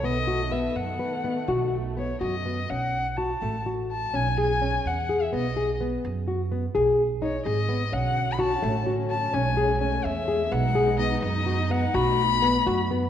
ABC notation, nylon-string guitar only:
X:1
M:11/8
L:1/8
Q:1/4=126
K:Bmix
V:1 name="Nylon-string guitar"
B, F B,2 B B, F2 B, F B, | C2 F A, F2 C G C2 G | B, G B,2 F B, G2 D G B, | C2 F A, F2 C G C2 G |
B, G B,2 F B, F2 B, F B, |]